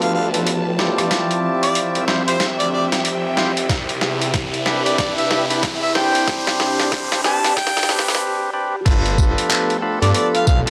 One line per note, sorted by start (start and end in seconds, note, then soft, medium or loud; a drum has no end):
0.00 0.31 D2 medium
0.00 3.65 F3 medium
0.00 3.69 F3 medium
0.00 1.09 A3 medium
0.00 1.09 B3 medium
0.00 0.29 D4 medium
0.00 0.29 F4 medium
0.00 1.09 G4 medium
0.00 0.29 A4 medium
0.00 0.29 B4 medium
0.00 1.12 B4 medium
0.00 0.10 F5 medium
0.00 2.17 A5 medium
0.00 closed hi-hat soft
0.00 riser medium
0.15 0.27 F5 medium
0.34 0.96 B1 medium
0.34 0.51 D4 medium
0.34 0.51 F4 medium
0.34 0.51 A4 medium
0.34 0.51 B4 medium
0.34 closed hi-hat medium
0.47 closed hi-hat medium
0.79 2.05 E4 medium
0.79 2.05 F4 medium
0.79 2.05 G4 medium
0.79 2.05 D5 loud
0.79 snare medium
0.98 1.10 G2 medium
0.98 cross-stick soft
0.98 closed hi-hat medium
1.11 3.67 C4 medium
1.11 6.23 G4 medium
1.11 6.23 E5 medium
1.11 snare medium
1.11 closed hi-hat medium
1.31 closed hi-hat soft
1.38 4.75 E5 medium
1.63 1.80 D5 medium
1.63 closed hi-hat medium
1.75 closed hi-hat medium
1.95 2.57 C2 medium
1.95 closed hi-hat soft
2.08 2.23 E4 loud
2.08 2.23 F4 medium
2.08 2.23 G4 medium
2.08 2.23 C5 loud
2.08 snare medium
2.27 2.38 E4 medium
2.27 2.38 F4 medium
2.27 2.38 G4 medium
2.27 2.44 C5 medium
2.27 2.37 C5 medium
2.27 4.74 G5 medium
2.27 closed hi-hat medium
2.40 snare medium
2.40 closed hi-hat medium
2.59 2.89 D2 loud
2.59 2.68 D5 medium
2.59 closed hi-hat soft
2.73 2.85 D5 medium
2.92 3.54 F1 loud
2.92 snare medium
2.92 closed hi-hat medium
3.05 closed hi-hat medium
3.37 3.52 E4 medium
3.37 3.52 F4 medium
3.37 3.52 G4 medium
3.37 3.52 C5 medium
3.37 snare medium
3.57 3.68 F1 medium
3.57 closed hi-hat medium
3.69 4.00 C2 medium
3.69 6.25 C3 medium
3.69 7.32 E4 medium
3.69 kick loud
3.69 snare medium
3.69 closed hi-hat medium
3.89 closed hi-hat soft
4.01 4.32 E2 medium
4.01 snare medium
4.22 closed hi-hat medium
4.34 4.97 C2 loud
4.34 kick medium
4.34 snare medium
4.34 closed hi-hat medium
4.54 closed hi-hat soft
4.66 4.83 D4 medium
4.66 4.83 E4 medium
4.66 4.83 G4 medium
4.66 4.83 B4 loud
4.66 snare medium
4.86 5.46 D4 medium
4.86 5.46 E4 medium
4.86 5.46 G4 medium
4.86 5.46 B4 medium
4.86 4.94 D5 medium
4.86 8.21 B5 medium
4.86 closed hi-hat medium
4.98 5.48 G2 medium
4.98 5.11 D5 medium
4.98 kick loud
4.98 snare medium
4.98 closed hi-hat medium
5.18 5.26 E5 medium
5.18 closed hi-hat soft
5.31 5.43 E5 medium
5.31 snare medium
5.50 6.12 E2 loud
5.50 5.67 D4 medium
5.50 5.67 E4 medium
5.50 5.68 G4 medium
5.50 5.67 B4 medium
5.50 closed hi-hat medium
5.63 kick medium
5.63 snare medium
5.63 closed hi-hat medium
5.82 5.93 E5 medium
5.95 7.21 C4 loud
5.95 7.21 D4 medium
5.95 7.21 G4 medium
5.95 7.21 C5 loud
5.95 6.35 G5 loud
5.95 snare medium
6.15 6.25 C2 medium
6.15 closed hi-hat medium
6.28 8.19 C3 medium
6.28 8.19 D4 medium
6.28 8.19 G4 medium
6.28 kick loud
6.28 snare medium
6.28 closed hi-hat medium
6.47 snare medium
6.47 closed hi-hat soft
6.60 snare medium
6.70 8.22 G4 medium
6.79 7.22 G1 loud
6.79 snare medium
6.79 closed hi-hat medium
6.92 kick loud
6.92 snare medium
6.92 closed hi-hat medium
7.12 snare medium
7.12 closed hi-hat soft
7.24 7.55 A1 loud
7.24 7.40 C4 loud
7.24 7.40 D4 medium
7.24 7.39 G4 medium
7.24 7.39 B4 loud
7.24 7.54 A5 medium
7.24 snare loud
7.44 7.54 C4 medium
7.44 7.54 D4 medium
7.44 7.54 G4 medium
7.44 7.54 B4 loud
7.44 8.21 D5 medium
7.44 snare medium
7.44 closed hi-hat medium
7.57 8.09 G5 medium
7.57 kick loud
7.57 snare loud
7.57 closed hi-hat medium
7.57 swell medium
7.67 snare medium
7.77 snare medium
7.77 closed hi-hat soft
7.83 snare medium
7.89 8.50 C4 medium
7.89 8.50 D4 medium
7.89 8.50 G4 medium
7.89 8.51 B4 loud
7.89 snare loud
7.99 snare loud
8.08 snare medium
8.08 closed hi-hat soft
8.15 snare medium
8.53 8.76 C4 medium
8.53 8.76 D4 medium
8.53 8.76 G4 medium
8.53 8.76 B4 loud
8.85 9.35 G1 loud
8.85 10.70 F3 medium
8.85 10.70 A3 medium
8.85 10.70 B3 medium
8.85 9.77 D4 loud
8.85 9.77 F4 medium
8.85 10.70 G4 medium
8.85 9.77 A4 medium
8.85 10.70 A4 loud
8.85 9.77 B4 loud
8.85 kick loud
8.85 closed hi-hat medium
8.85 crash loud
9.06 closed hi-hat soft
9.18 kick loud
9.18 tambourine medium
9.38 closed hi-hat medium
9.50 clap loud
9.50 closed hi-hat medium
9.70 closed hi-hat soft
9.82 9.99 D4 medium
9.82 9.99 F4 medium
9.82 9.99 A4 medium
9.82 9.99 B4 loud
10.02 10.13 G2 loud
10.02 10.62 D4 medium
10.02 10.62 F4 medium
10.02 10.62 A4 medium
10.02 10.62 B4 medium
10.02 10.10 D5 medium
10.02 closed hi-hat medium
10.14 10.28 D5 medium
10.14 closed hi-hat medium
10.35 10.43 F5 medium
10.35 closed hi-hat soft
10.47 10.64 B1 loud
10.47 10.60 F5 medium
10.47 kick loud
10.47 tambourine medium
10.66 10.70 D4 medium
10.66 10.70 F4 medium
10.66 10.70 A4 medium
10.66 10.70 B4 medium